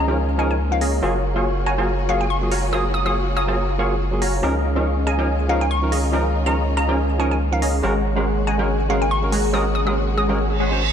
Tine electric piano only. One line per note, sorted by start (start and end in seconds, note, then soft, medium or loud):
0.07 0.16 F3 medium
0.07 0.16 C#4 medium
0.07 0.16 D#4 medium
0.07 0.17 A#4 medium
0.38 0.53 F3 medium
0.38 0.54 C#4 medium
0.38 0.54 D#4 medium
0.38 0.54 A#4 loud
0.71 0.79 F3 medium
0.71 0.80 C#4 medium
0.71 0.80 D#4 medium
0.71 0.80 A#4 medium
1.02 1.12 F#3 loud
1.02 1.12 A#3 medium
1.02 1.13 F4 loud
1.02 1.13 G#4 loud
1.35 1.43 F#3 medium
1.35 1.44 A#3 medium
1.35 1.44 F4 medium
1.35 1.44 G#4 medium
1.77 1.86 F#3 medium
1.77 1.86 A#3 medium
1.77 1.86 F4 medium
1.77 1.87 G#4 medium
2.08 2.24 F#3 medium
2.08 2.24 A#3 medium
2.08 2.24 F4 medium
2.08 2.25 G#4 loud
2.41 2.50 F#3 medium
2.41 2.50 A#3 medium
2.41 2.50 F4 medium
2.41 2.51 G#4 medium
2.72 2.82 F#3 loud
2.72 2.83 A#3 medium
2.72 2.83 F4 medium
2.72 2.83 G#4 loud
3.05 3.13 F#3 medium
3.05 3.14 A#3 medium
3.05 3.14 F4 medium
3.05 3.14 G#4 medium
3.47 3.56 F#3 medium
3.47 3.56 A#3 medium
3.47 3.57 F4 medium
3.47 3.57 G#4 medium
3.78 3.94 F#3 medium
3.78 3.94 A#3 medium
3.78 3.95 F4 medium
3.78 3.95 G#4 loud
4.11 4.20 F#3 medium
4.11 4.20 A#3 medium
4.11 4.21 F4 medium
4.11 4.21 G#4 medium
4.42 4.53 F3 loud
4.42 4.53 C#4 loud
4.42 4.53 D#4 medium
4.42 4.54 A#4 loud
4.75 4.84 F3 medium
4.75 4.84 C#4 medium
4.75 4.84 D#4 medium
4.75 4.85 A#4 medium
5.18 5.26 F3 medium
5.18 5.27 C#4 medium
5.18 5.27 D#4 medium
5.18 5.27 A#4 loud
5.48 5.64 F3 medium
5.48 5.64 C#4 medium
5.48 5.65 D#4 medium
5.48 5.65 A#4 loud
5.82 5.90 F3 medium
5.82 5.90 C#4 medium
5.82 5.91 D#4 medium
5.82 5.91 A#4 medium
6.12 6.23 F3 loud
6.12 6.23 C#4 medium
6.12 6.23 D#4 medium
6.12 6.24 A#4 loud
6.45 6.54 F3 medium
6.45 6.54 C#4 medium
6.45 6.55 D#4 medium
6.45 6.55 A#4 medium
6.88 6.96 F3 medium
6.88 6.97 C#4 medium
6.88 6.97 D#4 medium
6.88 6.97 A#4 loud
7.19 7.34 F3 loud
7.19 7.35 C#4 medium
7.19 7.35 D#4 medium
7.19 7.35 A#4 loud
7.52 7.60 F3 medium
7.52 7.61 C#4 medium
7.52 7.61 D#4 medium
7.52 7.61 A#4 medium
7.82 7.93 G#3 loud
7.82 7.93 C#4 medium
7.82 7.94 F#4 medium
7.82 7.94 A#4 loud
8.15 8.24 G#3 medium
8.15 8.24 C#4 medium
8.15 8.25 F#4 medium
8.15 8.25 A#4 medium
8.58 8.67 G#3 medium
8.58 8.67 C#4 medium
8.58 8.67 F#4 medium
8.58 8.68 A#4 medium
8.89 9.04 G#3 medium
8.89 9.05 C#4 medium
8.89 9.05 F#4 medium
8.89 9.05 A#4 loud
9.22 9.30 G#3 medium
9.22 9.31 C#4 medium
9.22 9.31 F#4 medium
9.22 9.31 A#4 medium
9.53 9.63 G#3 loud
9.53 9.64 C#4 medium
9.53 9.64 F#4 medium
9.53 9.64 A#4 loud
9.86 9.94 G#3 medium
9.86 9.95 C#4 medium
9.86 9.95 F#4 medium
9.86 9.95 A#4 loud
10.28 10.37 G#3 medium
10.28 10.37 C#4 medium
10.28 10.38 F#4 medium
10.28 10.38 A#4 loud
10.71 10.79 G#3 medium
10.71 10.80 C#4 medium
10.71 10.80 F#4 medium
10.71 10.80 C5 medium